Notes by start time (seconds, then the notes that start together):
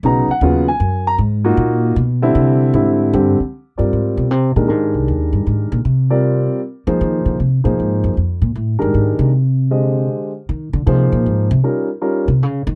0.03 B1 C#3 F#3 B3 D#4 A#5
0.28 F#5, muted upright bass stroke
0.41 D#2 C#3 F#3 B3 F4
0.68 G#5
0.80 F#2
1.07 A#5
1.18 G#2
1.44 A#3 D#4 F4 F#4
1.57 A#2
1.96 B2
2.22 D3 G3 C4 E4
2.35 C3
2.74 G#2 D3 G3 C4 E4
3.13 G2 D3 G3 C4 G4
3.40 muted upright bass stroke
3.78 G2 G3 C4 F4 A#4 D5
3.93 G#2
4.17 B2
4.31 C3
4.56 A#2 D#3 G#3 D4 G4 A#4
4.68 G#2 D#3 G#3 D4 G4 A#4
4.94 C2
5.08 D#2
5.33 G2
5.47 G#2
5.72 A#2
5.85 C3
6.10 G3 C4 F4 A#4 D5
6.87 F3 A#3 D#4 G#4 C5
7.01 D#3
7.26 D3
7.40 C3
7.64 A#2 F3 A#3 D#4 G#4 C5
7.80 G#2
8.04 F#2
8.17 F2
8.42 A#2
8.55 A2
8.79 G2 D#3 G#3 D4 G4 A#4
8.94 G#2
9.19 C3
9.71 D3 G#3 G4 C5 D#5
10.49 D#3
10.73 D3
10.86 C3 F3 A#3 D#4 G#4 C5
11.12 A#2
11.26 G#2
11.51 C3
11.63 G3 C#4 D#4 F4 A#4
12.01 G3 C#4 D#4 F4 A#4
12.28 C3
12.43 C#3
12.67 D#3